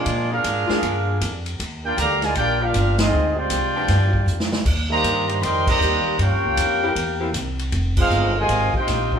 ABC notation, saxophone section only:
X:1
M:4/4
L:1/8
Q:"Swing" 1/4=157
K:Fm
V:1 name="Saxophone section"
z3 [=D,B,FA]3 z2 | z8 | z3 [F,=B,=DG]3 z2 | z6 [E,B,CG]2 |
z3 [=E,B,CG] z [E,B,CG] z2 | z8 |]